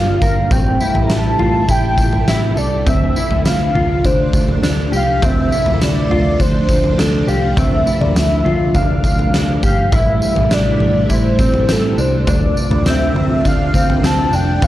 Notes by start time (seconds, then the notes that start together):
Already playing: G1 D3 G3 A#3 F4 F5
0.22 G1 A#4, kick, tambourine
0.50 A1 C3 A3 C4 E4 G5, kick, floor tom, tambourine
0.80 E4, tambourine
0.95 A1, floor tom
1.03 A#5
1.09 A1 A5, snare, tambourine
1.39 A1 F4, floor tom
1.68 A1 E4 G5, kick, tambourine
1.98 A1, kick, tambourine
2.13 floor tom
2.28 A1 E4 E5, snare, tambourine
2.56 C2 A4 D5, tambourine
2.86 D2 F3 A3 C4 D4 E5, kick, floor tom, tambourine
3.16 E4, tambourine
3.31 D2, floor tom
3.45 D2 F5, snare, tambourine
3.75 D2 F4, floor tom
4.04 D2 D4 C5, kick, tambourine
4.33 D2, kick, tambourine
4.48 floor tom
4.62 D2 D4, snare, tambourine
4.92 C2 G4, tambourine
4.96 F5
5.22 D2 C4 E5, kick, floor tom, tambourine
5.52 E4, tambourine
5.66 D2, floor tom
5.81 D2 D5, snare, tambourine
6.10 D2 F4, floor tom
6.40 D2 D4 C5, kick, tambourine
6.68 D2, kick, tambourine
6.84 floor tom
6.98 D2 D4 A4, snare, tambourine
7.28 C2 G4 F5, tambourine
7.57 D2 C4 E5, kick, floor tom, tambourine
7.86 E4, tambourine
8.01 D2 D5, floor tom
8.15 D2 E5, snare, tambourine
8.45 D2 F4, floor tom
8.74 D2 D4 F5, kick, floor tom, tambourine
9.04 D2, kick, tambourine
9.19 floor tom
9.33 D2 D4, snare, tambourine
9.63 G1 G4 F5, kick, tambourine
9.92 A1 C3 G3 A3 E4 E5, kick, floor tom, tambourine
10.22 tambourine
10.36 A1, floor tom
10.50 A1 D4 D5, snare, tambourine
10.80 A1, floor tom
11.10 A1 E4 C5, kick, tambourine
11.39 A1 C4, kick, tambourine
11.54 floor tom
11.68 A1 C4 A4, snare, tambourine
11.98 C2 D4 C5, tambourine
12.27 D2 C3 A3 D4 F4 D5, kick, floor tom, tambourine
12.57 tambourine
12.71 D2, floor tom
12.85 D2 C4, snare, tambourine
12.90 E5
13.15 D2, floor tom
13.45 D2 D4 F5, kick, tambourine
13.74 D2 C4, kick, tambourine
13.90 floor tom
14.02 D2 C4 A5, snare, tambourine
14.32 F1 D4 G5, tambourine
14.61 G1 E3 G3 A#3 G4, kick, floor tom, tambourine